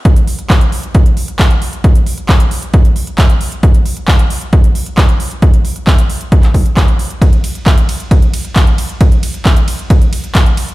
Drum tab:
RD |----------------|----------------|----------------|----------------|
HH |xxoxxxoxxxoxxxox|xxoxxxoxxxoxxxox|xxoxxxoxxxoxxxox|xxoxxxoxxxoxxxox|
CP |----x-------x---|----x-------x---|----x-------x---|----x----x--x---|
BD |o---o---o---o---|o---o---o---o---|o---o---o---o---|o---o---o-o-o---|

RD |x-x-x-x-x-x-x-x-|x-x-x-x-x-x-x-x-|
HH |xxoxxxoxxxoxxxox|xxoxxxoxxxoxxxox|
CP |----x-------x---|----x-------x---|
BD |o---o---o---o---|o---o---o---o---|